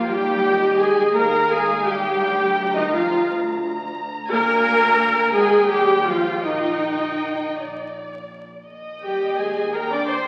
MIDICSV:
0, 0, Header, 1, 6, 480
1, 0, Start_track
1, 0, Key_signature, -3, "major"
1, 0, Tempo, 714286
1, 46, Time_signature, 6, 3, 24, 8
1, 1965, Tempo, 694444
1, 3885, Tempo, 739827
1, 5805, Tempo, 714286
1, 6889, End_track
2, 0, Start_track
2, 0, Title_t, "Violin section"
2, 0, Program_c, 0, 48
2, 44, Note_on_c, 0, 79, 75
2, 533, Note_on_c, 0, 80, 71
2, 534, Note_off_c, 0, 79, 0
2, 770, Note_off_c, 0, 80, 0
2, 775, Note_on_c, 0, 82, 77
2, 1009, Note_off_c, 0, 82, 0
2, 1012, Note_on_c, 0, 80, 70
2, 1250, Note_off_c, 0, 80, 0
2, 1259, Note_on_c, 0, 79, 75
2, 1847, Note_on_c, 0, 75, 65
2, 1850, Note_off_c, 0, 79, 0
2, 1965, Note_off_c, 0, 75, 0
2, 1971, Note_on_c, 0, 77, 66
2, 2201, Note_off_c, 0, 77, 0
2, 2923, Note_on_c, 0, 82, 88
2, 3610, Note_off_c, 0, 82, 0
2, 3635, Note_on_c, 0, 80, 81
2, 3885, Note_off_c, 0, 80, 0
2, 3887, Note_on_c, 0, 79, 77
2, 4122, Note_off_c, 0, 79, 0
2, 4132, Note_on_c, 0, 77, 65
2, 4371, Note_off_c, 0, 77, 0
2, 4372, Note_on_c, 0, 75, 60
2, 5070, Note_off_c, 0, 75, 0
2, 6055, Note_on_c, 0, 79, 55
2, 6276, Note_off_c, 0, 79, 0
2, 6296, Note_on_c, 0, 80, 54
2, 6533, Note_off_c, 0, 80, 0
2, 6538, Note_on_c, 0, 82, 53
2, 6654, Note_off_c, 0, 82, 0
2, 6656, Note_on_c, 0, 86, 50
2, 6766, Note_on_c, 0, 84, 48
2, 6772, Note_off_c, 0, 86, 0
2, 6889, Note_off_c, 0, 84, 0
2, 6889, End_track
3, 0, Start_track
3, 0, Title_t, "Violin section"
3, 0, Program_c, 1, 48
3, 295, Note_on_c, 1, 75, 51
3, 768, Note_off_c, 1, 75, 0
3, 779, Note_on_c, 1, 77, 53
3, 1009, Note_off_c, 1, 77, 0
3, 1017, Note_on_c, 1, 77, 49
3, 1481, Note_off_c, 1, 77, 0
3, 1730, Note_on_c, 1, 82, 54
3, 2426, Note_off_c, 1, 82, 0
3, 2440, Note_on_c, 1, 82, 57
3, 2908, Note_off_c, 1, 82, 0
3, 2912, Note_on_c, 1, 80, 79
3, 3604, Note_off_c, 1, 80, 0
3, 3639, Note_on_c, 1, 79, 74
3, 4356, Note_off_c, 1, 79, 0
3, 4369, Note_on_c, 1, 79, 56
3, 5068, Note_off_c, 1, 79, 0
3, 5091, Note_on_c, 1, 74, 45
3, 5677, Note_off_c, 1, 74, 0
3, 5812, Note_on_c, 1, 75, 47
3, 6506, Note_off_c, 1, 75, 0
3, 6527, Note_on_c, 1, 79, 46
3, 6889, Note_off_c, 1, 79, 0
3, 6889, End_track
4, 0, Start_track
4, 0, Title_t, "Viola section"
4, 0, Program_c, 2, 48
4, 50, Note_on_c, 2, 67, 95
4, 535, Note_on_c, 2, 68, 82
4, 538, Note_off_c, 2, 67, 0
4, 775, Note_off_c, 2, 68, 0
4, 779, Note_on_c, 2, 70, 90
4, 1015, Note_on_c, 2, 68, 95
4, 1016, Note_off_c, 2, 70, 0
4, 1252, Note_off_c, 2, 68, 0
4, 1252, Note_on_c, 2, 67, 82
4, 1847, Note_off_c, 2, 67, 0
4, 1853, Note_on_c, 2, 63, 71
4, 1968, Note_off_c, 2, 63, 0
4, 1973, Note_on_c, 2, 65, 74
4, 2207, Note_off_c, 2, 65, 0
4, 2928, Note_on_c, 2, 70, 118
4, 3612, Note_off_c, 2, 70, 0
4, 3643, Note_on_c, 2, 68, 102
4, 3884, Note_off_c, 2, 68, 0
4, 3890, Note_on_c, 2, 67, 95
4, 4128, Note_off_c, 2, 67, 0
4, 4128, Note_on_c, 2, 65, 81
4, 4369, Note_off_c, 2, 65, 0
4, 4374, Note_on_c, 2, 63, 77
4, 5085, Note_off_c, 2, 63, 0
4, 6056, Note_on_c, 2, 67, 55
4, 6277, Note_off_c, 2, 67, 0
4, 6299, Note_on_c, 2, 68, 58
4, 6534, Note_off_c, 2, 68, 0
4, 6538, Note_on_c, 2, 70, 67
4, 6653, Note_off_c, 2, 70, 0
4, 6656, Note_on_c, 2, 74, 60
4, 6769, Note_off_c, 2, 74, 0
4, 6775, Note_on_c, 2, 72, 64
4, 6889, Note_off_c, 2, 72, 0
4, 6889, End_track
5, 0, Start_track
5, 0, Title_t, "Cello section"
5, 0, Program_c, 3, 48
5, 49, Note_on_c, 3, 55, 90
5, 534, Note_on_c, 3, 56, 80
5, 537, Note_off_c, 3, 55, 0
5, 770, Note_off_c, 3, 56, 0
5, 776, Note_on_c, 3, 58, 74
5, 1014, Note_off_c, 3, 58, 0
5, 1016, Note_on_c, 3, 56, 73
5, 1248, Note_off_c, 3, 56, 0
5, 1252, Note_on_c, 3, 55, 82
5, 1847, Note_off_c, 3, 55, 0
5, 1849, Note_on_c, 3, 51, 68
5, 1966, Note_off_c, 3, 51, 0
5, 1967, Note_on_c, 3, 53, 68
5, 2204, Note_off_c, 3, 53, 0
5, 2922, Note_on_c, 3, 58, 108
5, 3609, Note_off_c, 3, 58, 0
5, 3642, Note_on_c, 3, 56, 86
5, 3884, Note_off_c, 3, 56, 0
5, 3890, Note_on_c, 3, 55, 78
5, 4124, Note_off_c, 3, 55, 0
5, 4131, Note_on_c, 3, 53, 71
5, 4371, Note_off_c, 3, 53, 0
5, 4372, Note_on_c, 3, 51, 65
5, 5084, Note_off_c, 3, 51, 0
5, 6057, Note_on_c, 3, 55, 49
5, 6277, Note_off_c, 3, 55, 0
5, 6297, Note_on_c, 3, 56, 54
5, 6533, Note_off_c, 3, 56, 0
5, 6535, Note_on_c, 3, 58, 57
5, 6650, Note_off_c, 3, 58, 0
5, 6653, Note_on_c, 3, 62, 52
5, 6770, Note_off_c, 3, 62, 0
5, 6771, Note_on_c, 3, 60, 55
5, 6889, Note_off_c, 3, 60, 0
5, 6889, End_track
6, 0, Start_track
6, 0, Title_t, "Double bass section"
6, 0, Program_c, 4, 48
6, 46, Note_on_c, 4, 39, 72
6, 691, Note_off_c, 4, 39, 0
6, 775, Note_on_c, 4, 39, 68
6, 1404, Note_off_c, 4, 39, 0
6, 1485, Note_on_c, 4, 38, 70
6, 2117, Note_off_c, 4, 38, 0
6, 2200, Note_on_c, 4, 38, 72
6, 2831, Note_off_c, 4, 38, 0
6, 2920, Note_on_c, 4, 38, 80
6, 3608, Note_off_c, 4, 38, 0
6, 3636, Note_on_c, 4, 39, 73
6, 4368, Note_off_c, 4, 39, 0
6, 4375, Note_on_c, 4, 34, 58
6, 5071, Note_off_c, 4, 34, 0
6, 5086, Note_on_c, 4, 34, 49
6, 5663, Note_off_c, 4, 34, 0
6, 5808, Note_on_c, 4, 39, 52
6, 6889, Note_off_c, 4, 39, 0
6, 6889, End_track
0, 0, End_of_file